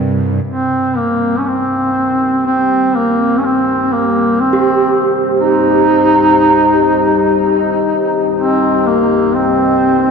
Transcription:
0.00 0.43 C2 medium
0.00 0.44 G2 medium
0.00 0.65 C3 medium
0.44 10.11 C2 medium
0.44 10.11 G2 medium
0.44 0.99 C4 medium
0.44 10.11 D#4 medium
0.73 10.11 G4 medium
0.97 1.40 A#3 medium
1.38 1.49 C#4 medium
1.47 2.45 C4 medium
2.46 2.98 C4 medium
2.96 3.39 A#3 medium
3.36 3.46 C#4 medium
3.36 10.11 C5 medium
3.44 3.94 C4 medium
3.53 10.11 D#5 medium
3.93 4.42 A#3 medium
4.41 5.13 C4 loud
4.53 10.11 G4 medium
5.40 7.81 D#4 loud
8.36 8.88 C4 medium
8.87 9.37 A#3 medium
9.35 10.11 C4 medium

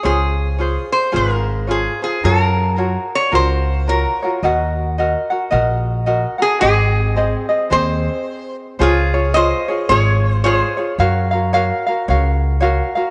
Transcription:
0.03 0.76 C#2 medium
0.03 0.59 F4 medium
0.03 0.59 G#4 medium
0.03 0.92 G#4 medium
0.03 0.59 C5 medium
0.03 0.58 C#5 medium
0.58 1.12 F4 soft
0.58 1.11 G#4 soft
0.58 1.12 C5 medium
0.58 1.11 C#5 soft
0.92 1.12 C5 medium
1.12 1.85 G#1 medium
1.12 1.68 F4 medium
1.12 1.68 G#4 medium
1.12 1.68 C5 medium
1.12 1.67 C#5 medium
1.16 1.70 A#4 medium
1.67 2.02 F4 medium
1.67 2.02 G#4 soft
1.67 2.02 G#4 medium
1.67 2.01 C5 medium
1.67 2.01 C#5 soft
2.02 2.23 F4 soft
2.02 2.24 G#4 soft
2.02 2.23 G#4 medium
2.02 2.23 C5 soft
2.23 2.95 F#2 medium
2.23 2.76 F4 medium
2.23 2.78 F#4 medium
2.23 2.42 A4 medium
2.23 2.76 A#4 medium
2.23 2.76 C#5 medium
2.42 3.15 A#4 medium
2.76 3.31 F4 medium
2.76 3.33 F#4 medium
2.76 3.32 A#4 medium
2.76 3.31 C#5 medium
3.15 3.35 C#5 medium
3.32 4.04 C#2 medium
3.32 3.87 F4 medium
3.32 3.88 F#4 medium
3.32 3.87 A#4 medium
3.32 3.90 C5 medium
3.87 4.21 F4 medium
3.87 4.22 F#4 medium
3.87 4.21 A#4 soft
3.87 4.29 A#4 medium
3.87 4.21 C#5 medium
4.22 4.43 F4 soft
4.22 4.43 F#4 soft
4.22 4.43 C#5 soft
4.43 5.14 D#2 medium
4.43 4.97 F#4 medium
4.43 4.98 A#4 medium
4.43 4.98 D#5 medium
4.43 4.99 F#5 medium
4.98 5.30 F#4 medium
4.98 5.30 A#4 medium
4.98 5.31 D#5 medium
4.98 5.29 F#5 medium
5.30 5.50 F#4 soft
5.30 5.51 A#4 soft
5.30 5.51 F#5 soft
5.51 6.23 A#1 medium
5.51 6.05 F#4 medium
5.51 6.06 A#4 medium
5.51 6.06 D#5 medium
5.51 6.06 F#5 medium
6.06 6.38 F#4 medium
6.06 6.38 A#4 medium
6.06 6.40 D#5 medium
6.06 6.37 F#5 medium
6.38 6.60 F#4 soft
6.38 6.60 G#4 medium
6.38 6.61 A#4 soft
6.38 6.61 F#5 soft
6.60 7.33 G#1 medium
6.60 7.17 C4 medium
6.60 7.45 G#4 loud
6.60 7.16 G#4 medium
6.60 7.15 C5 medium
6.60 7.16 D#5 medium
7.16 7.49 C4 medium
7.16 7.48 G#4 medium
7.16 7.49 C5 medium
7.16 7.48 D#5 medium
7.49 7.70 C4 soft
7.49 7.70 G#4 soft
7.49 7.71 D#5 soft
7.70 8.06 D#2 medium
7.70 8.76 C4 medium
7.70 8.76 G#4 medium
7.70 8.76 C5 medium
7.70 8.56 C5 medium
7.70 8.26 D#5 medium
8.79 9.51 C#2 medium
8.79 9.14 F4 medium
8.79 9.32 F4 medium
8.79 9.13 G#4 medium
8.79 9.36 G#4 medium
8.79 9.13 C5 medium
8.79 9.13 C#5 medium
9.14 9.35 F4 soft
9.14 9.35 G#4 soft
9.14 9.35 C#5 medium
9.34 9.69 F4 medium
9.34 9.68 G#4 medium
9.34 9.68 C5 medium
9.34 9.87 C5 medium
9.34 9.67 C#5 medium
9.34 9.91 D#5 medium
9.68 9.89 F4 soft
9.68 9.90 G#4 soft
9.68 9.90 C#5 soft
9.89 10.60 G#1 medium
9.89 10.45 F4 medium
9.89 10.44 G#4 medium
9.89 10.41 G#4 medium
9.89 10.30 C#5 medium
9.89 10.45 C#5 medium
10.30 10.44 C5 medium
10.44 10.78 F4 medium
10.44 10.77 G#4 medium
10.44 10.86 G#4 medium
10.44 10.85 C5 medium
10.44 10.77 C5 medium
10.44 10.76 C#5 medium
10.77 10.99 F4 soft
10.77 10.99 G#4 soft
10.77 10.98 C#5 soft
10.99 11.70 F#2 medium
10.99 11.32 F#4 medium
10.99 11.31 A#4 medium
10.99 11.32 C#5 medium
10.99 11.30 F5 medium
11.31 11.53 F#4 soft
11.31 11.53 A#4 medium
11.31 11.53 F5 medium
11.53 11.87 F#4 medium
11.53 11.87 A#4 medium
11.53 11.86 C#5 medium
11.53 11.85 F5 medium
11.87 12.08 F#4 soft
11.87 12.09 A#4 medium
11.87 12.08 F5 medium
12.08 12.79 C#2 medium
12.08 12.61 F#4 medium
12.08 12.62 A#4 medium
12.08 12.59 C#5 medium
12.08 12.61 F5 medium
12.60 12.95 F#4 medium
12.60 12.95 A#4 medium
12.60 12.95 C#5 medium
12.60 12.94 F5 medium
12.95 13.10 F#4 soft
12.95 13.10 A#4 medium
12.95 13.10 F5 medium

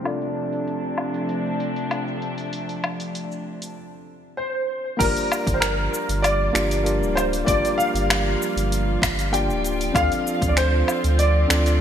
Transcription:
0.02 3.73 C3 medium
0.02 3.73 F3 medium
0.02 3.72 A3 medium
0.02 3.75 C4 medium
0.02 3.75 D4 medium
0.02 3.72 D4 medium
0.02 3.76 F4 medium
0.02 3.76 A4 medium
0.02 open hi-hat soft
0.02 low woodblock medium
0.06 3.77 D5 medium
0.06 shaker medium
0.22 open hi-hat soft
0.22 shaker soft
0.53 open hi-hat soft
0.53 shaker medium
0.68 open hi-hat soft
0.68 shaker medium
0.84 shaker soft
0.98 low woodblock medium
1.14 open hi-hat soft
1.14 shaker medium
1.29 open hi-hat soft
1.29 shaker medium
1.46 shaker soft
1.60 open hi-hat soft
1.76 open hi-hat soft
1.76 shaker medium
1.91 open hi-hat soft
1.91 low woodblock medium
1.91 shaker soft
2.08 shaker soft
2.22 open hi-hat soft
2.38 open hi-hat soft
2.38 shaker medium
2.53 open hi-hat soft
2.53 shaker medium
2.69 open hi-hat soft
2.69 shaker soft
2.84 low woodblock medium
3.00 open hi-hat soft
3.00 shaker medium
3.15 open hi-hat soft
3.15 shaker soft
3.32 shaker soft
3.62 open hi-hat soft
3.62 shaker medium
4.37 5.01 C5 medium
4.97 5.13 G1 medium
4.97 11.81 F3 medium
4.97 9.91 G3 medium
4.97 6.50 A#3 medium
4.97 9.91 A#3 medium
4.97 6.50 D4 medium
4.97 6.51 F4 medium
4.97 11.81 F4 medium
4.97 6.51 G4 medium
4.97 5.56 A#4 medium
4.97 kick loud
4.97 open hi-hat medium
4.97 crash loud
5.01 6.52 D5 medium
5.01 shaker soft
5.17 open hi-hat soft
5.17 shaker soft
5.32 low woodblock medium
5.32 shaker medium
5.47 5.88 G1 medium
5.47 kick loud
5.47 open hi-hat soft
5.47 shaker soft
5.54 5.61 C5 medium
5.60 6.25 A#4 medium
5.60 finger snap medium
5.60 open hi-hat medium
5.60 shaker soft
5.94 shaker medium
6.09 6.50 G1 loud
6.09 open hi-hat soft
6.09 shaker soft
6.22 7.19 D5 loud
6.22 open hi-hat medium
6.22 low woodblock medium
6.22 shaker soft
6.53 7.03 G1 medium
6.53 6.81 A#3 medium
6.53 6.81 D4 medium
6.53 6.82 F4 medium
6.53 6.82 G4 medium
6.53 6.82 D5 medium
6.53 finger snap medium
6.53 open hi-hat medium
6.53 shaker medium
6.71 open hi-hat soft
6.71 shaker soft
6.84 7.43 A#3 medium
6.84 7.43 D4 medium
6.84 7.43 F4 medium
6.84 7.44 G4 medium
6.84 7.44 D5 medium
6.84 open hi-hat medium
6.84 shaker soft
7.01 7.43 D1 medium
7.01 shaker soft
7.15 7.23 C5 medium
7.15 open hi-hat soft
7.15 low woodblock medium
7.15 shaker medium
7.33 open hi-hat soft
7.33 shaker soft
7.45 7.60 G1 loud
7.45 9.28 A#3 medium
7.45 9.29 D4 medium
7.45 9.29 F4 medium
7.45 9.30 G4 medium
7.45 7.76 D5 loud
7.45 kick loud
7.45 open hi-hat medium
7.49 9.30 D5 loud
7.49 shaker soft
7.65 open hi-hat soft
7.65 shaker soft
7.78 9.37 F5 loud
7.78 shaker medium
7.94 8.36 G1 medium
7.94 open hi-hat soft
7.94 shaker soft
8.10 finger snap medium
8.10 open hi-hat medium
8.10 low woodblock medium
8.10 shaker soft
8.42 shaker medium
8.56 8.98 G1 loud
8.56 open hi-hat soft
8.56 shaker soft
8.72 open hi-hat medium
8.72 shaker soft
9.02 9.51 G1 medium
9.02 finger snap medium
9.02 kick loud
9.02 open hi-hat medium
9.02 low woodblock medium
9.02 shaker medium
9.19 open hi-hat soft
9.19 shaker soft
9.32 9.90 A#3 medium
9.32 9.91 D4 medium
9.32 9.91 F4 medium
9.32 9.91 G4 medium
9.32 9.92 D5 medium
9.32 9.96 G5 loud
9.32 open hi-hat medium
9.32 shaker soft
9.49 9.90 D1 medium
9.49 shaker soft
9.64 open hi-hat soft
9.64 shaker medium
9.81 open hi-hat soft
9.81 shaker soft
9.92 10.08 D2 medium
9.92 11.45 C4 medium
9.92 11.81 C4 medium
9.92 11.45 D4 medium
9.92 11.46 F4 medium
9.92 11.47 A4 medium
9.92 10.52 F5 loud
9.92 kick loud
9.92 open hi-hat medium
9.92 low woodblock medium
9.97 11.47 D5 medium
9.97 shaker soft
10.12 open hi-hat soft
10.12 shaker soft
10.27 shaker medium
10.42 10.83 D2 loud
10.42 kick loud
10.42 open hi-hat soft
10.42 shaker soft
10.48 10.56 D5 medium
10.57 11.21 C5 loud
10.57 finger snap medium
10.57 open hi-hat medium
10.57 shaker soft
10.88 low woodblock medium
10.88 shaker medium
11.04 11.45 D2 loud
11.04 open hi-hat soft
11.04 shaker soft
11.19 11.76 D5 medium
11.19 open hi-hat medium
11.19 shaker soft
11.48 11.81 D2 medium
11.48 11.76 C4 medium
11.48 11.76 D4 medium
11.48 11.77 F4 medium
11.48 11.77 A4 medium
11.48 11.77 D5 loud
11.48 finger snap medium
11.48 open hi-hat soft
11.48 shaker medium
11.66 open hi-hat soft
11.66 shaker soft

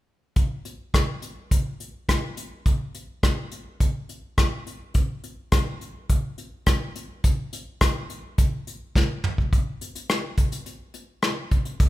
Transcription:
0.36 kick medium
0.36 closed hi-hat medium
0.65 closed hi-hat soft
0.94 kick medium
0.94 cross-stick medium
0.94 closed hi-hat medium
1.22 closed hi-hat medium
1.51 kick medium
1.51 closed hi-hat medium
1.80 closed hi-hat soft
2.09 kick medium
2.09 cross-stick medium
2.09 closed hi-hat medium
2.37 closed hi-hat medium
2.66 kick medium
2.66 closed hi-hat medium
2.95 closed hi-hat medium
3.23 kick medium
3.23 cross-stick medium
3.23 closed hi-hat medium
3.52 closed hi-hat soft
3.80 kick medium
3.80 closed hi-hat medium
4.09 closed hi-hat soft
4.38 kick medium
4.38 cross-stick medium
4.38 closed hi-hat medium
4.67 closed hi-hat medium
4.94 kick medium
4.94 closed hi-hat medium
5.24 closed hi-hat medium
5.52 kick medium
5.52 cross-stick medium
5.52 closed hi-hat medium
5.81 closed hi-hat soft
6.09 kick medium
6.09 closed hi-hat medium
6.38 closed hi-hat medium
6.66 kick medium
6.66 cross-stick medium
6.66 closed hi-hat medium
6.96 closed hi-hat medium
7.24 kick medium
7.24 closed hi-hat medium
7.53 closed hi-hat medium
7.81 kick medium
7.81 cross-stick medium
7.81 closed hi-hat medium
8.10 closed hi-hat medium
8.38 kick medium
8.38 closed hi-hat medium
8.67 closed hi-hat soft
8.95 kick medium
8.95 snare soft
9.24 mid tom medium
9.38 kick medium
9.53 kick medium
9.53 closed hi-hat soft
9.81 closed hi-hat medium
9.95 closed hi-hat medium
10.09 cross-stick medium
10.09 closed hi-hat medium
10.37 kick medium
10.37 closed hi-hat medium
10.52 closed hi-hat medium
10.66 closed hi-hat medium
10.94 closed hi-hat soft
11.22 cross-stick medium
11.22 closed hi-hat medium
11.51 kick medium
11.51 closed hi-hat medium
11.65 closed hi-hat soft
11.80 kick medium
11.80 closed hi-hat medium

